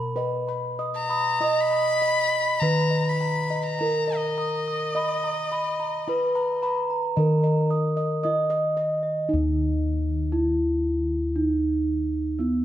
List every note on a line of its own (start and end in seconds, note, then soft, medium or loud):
0.00 1.37 B2 medium
0.00 0.17 A#4 medium
0.00 0.14 B5 medium
0.16 3.76 B4 medium
0.16 1.42 B4 medium
0.16 0.52 D#5 medium
0.16 0.46 B5 medium
0.47 0.77 B5 medium
0.47 0.83 B5 medium
0.79 1.14 D#5 medium
0.79 1.08 D#6 medium
0.95 1.62 A#5 loud
1.09 1.44 B5 medium
1.09 1.39 D#6 medium
1.40 1.48 E4 soft
1.40 1.75 D#5 medium
1.40 2.63 D#5 loud
1.40 1.70 D#6 medium
1.61 2.61 B5 loud
1.71 2.05 B5 medium
1.71 2.00 D#6 medium
2.02 2.36 D#5 medium
2.02 2.30 B5 medium
2.32 2.60 B5 medium
2.60 6.03 D#3 medium
2.60 3.80 B4 medium
2.60 3.10 A#5 loud
2.60 2.95 A#5 medium
2.60 2.90 B5 medium
2.91 3.24 D#5 medium
2.91 3.19 B5 medium
3.09 3.65 B5 loud
3.21 3.54 A#5 medium
3.21 3.49 A#5 medium
3.50 3.83 D#5 medium
3.50 3.78 A#5 medium
3.63 4.18 A#5 loud
3.79 3.89 E4 soft
3.79 4.96 A#4 medium
3.79 4.12 A#5 medium
3.79 4.07 A#5 medium
4.08 4.41 D#5 medium
4.08 4.36 A#5 medium
4.17 6.76 D#5 medium
4.38 4.70 A#5 medium
4.38 4.65 D#6 medium
4.68 4.94 D#6 medium
4.95 6.07 D#5 medium
4.95 8.20 D#5 medium
4.95 5.27 B5 medium
4.95 5.22 D#6 medium
5.24 5.55 A#5 soft
5.24 5.50 D#6 medium
5.52 5.83 B5 medium
5.52 5.78 B5 medium
5.80 6.11 A#5 medium
5.80 6.06 B5 medium
6.08 6.16 E4 soft
6.08 7.18 B4 loud
6.08 6.38 B5 medium
6.08 6.33 B5 medium
6.35 6.66 A#5 medium
6.35 6.61 B5 medium
6.62 6.88 A#5 medium
6.62 6.93 B5 medium
6.90 7.15 A#5 medium
7.16 10.28 D#3 medium
7.16 8.25 A#4 medium
7.16 7.44 D#5 medium
7.16 7.42 A#5 medium
7.44 7.70 D#5 medium
7.44 7.69 A#5 medium
7.70 7.97 D#5 medium
7.70 7.96 D#6 medium
7.97 8.23 D#5 medium
7.97 8.22 D#6 soft
8.23 8.33 E4 soft
8.23 8.50 D#5 medium
8.23 9.29 D#5 medium
8.23 8.48 D#6 medium
8.50 8.77 D#5 medium
8.50 8.75 D#6 medium
8.77 9.06 D#5 medium
8.77 9.01 D#5 soft
9.03 9.27 D#5 medium
9.29 12.35 D#4 medium
9.29 10.32 D#4 medium
9.33 12.65 D#2 medium
10.32 11.36 E4 medium
10.32 10.41 E4 soft
11.36 12.39 D#4 medium
12.39 12.65 B3 medium
12.39 12.48 E4 soft